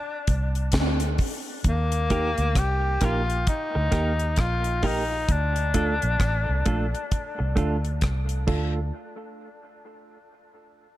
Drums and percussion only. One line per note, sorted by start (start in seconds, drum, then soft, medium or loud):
0.27 kick loud
0.27 closed hi-hat medium
0.55 closed hi-hat soft
0.72 kick loud
0.72 snare loud
0.72 closed hi-hat medium
1.00 closed hi-hat medium
1.18 kick medium
1.18 open hi-hat medium
1.64 kick loud
1.64 closed hi-hat medium
1.92 closed hi-hat medium
2.10 kick medium
2.10 closed hi-hat medium
2.38 closed hi-hat soft
2.55 kick loud
2.55 cross-stick loud
2.55 closed hi-hat medium
3.01 kick medium
3.01 cross-stick medium
3.01 closed hi-hat medium
3.30 closed hi-hat soft
3.47 kick loud
3.47 closed hi-hat medium
3.92 kick medium
3.92 cross-stick medium
3.92 closed hi-hat medium
4.19 closed hi-hat soft
4.36 kick loud
4.36 cross-stick loud
4.36 closed hi-hat medium
4.64 closed hi-hat medium
4.83 kick medium
4.83 open hi-hat medium
5.28 kick loud
5.28 closed hi-hat medium
5.56 closed hi-hat medium
5.74 kick medium
5.74 closed hi-hat medium
6.02 closed hi-hat soft
6.20 kick loud
6.20 cross-stick loud
6.20 closed hi-hat medium
6.66 kick medium
6.66 closed hi-hat medium
6.95 closed hi-hat soft
7.11 kick loud
7.11 closed hi-hat medium
7.57 kick medium
7.57 closed hi-hat medium
7.85 closed hi-hat soft
8.01 kick loud
8.01 cross-stick loud
8.01 closed hi-hat medium
8.29 closed hi-hat medium
8.47 kick loud
8.47 crash medium